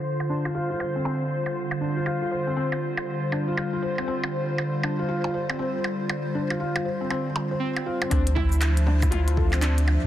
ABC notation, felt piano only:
X:1
M:4/4
L:1/16
Q:"Swing 16ths" 1/4=119
K:Gdor
V:1 name="Felt piano"
z2 D F F F c C C z4 z D F | F F c C C z4 z D F F F c C | C z4 z D F F F c C C z3 | z2 D F F F c C C z2 c z2 F C |
C z4 z D E E E A C C z3 |]